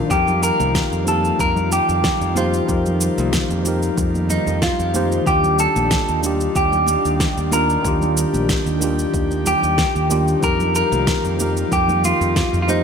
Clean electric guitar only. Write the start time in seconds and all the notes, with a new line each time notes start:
0.11 G4
0.43 A#4
1.08 A4
1.40 A#4
1.73 G4
2.37 F4
4.30 D#4
4.63 F4
5.27 G4
5.60 A4
6.56 G4
7.53 A#4
9.47 G4
10.44 A#4
10.76 A#4
11.73 G4
12.05 F4
12.62 F4
12.69 D#4